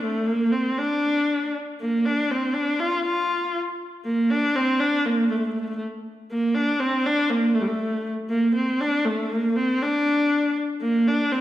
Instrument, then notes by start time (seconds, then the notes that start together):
viola
0.04 A3
0.26 A#3
0.52 C4
0.78 D4
1.81 A#3
2.06 D4
2.31 C4
2.53 D4
2.79 F4
3.05 F4
4.05 A#3
4.30 D4
4.56 C4
4.80 D4
5.05 A#3
5.30 A3
5.39 A3
5.46 A3
5.53 A3
5.61 A3
5.69 A3
5.75 A3
6.31 A#3
6.54 D4
6.80 C4
7.06 D4
7.30 A#3
7.55 A3
7.61 G3
7.67 A3
8.29 A#3
8.55 C4
8.81 D4
9.05 A3
9.31 A#3
9.49 A#3
9.56 C4
9.83 D4
10.81 A#3
11.07 D4
11.32 C4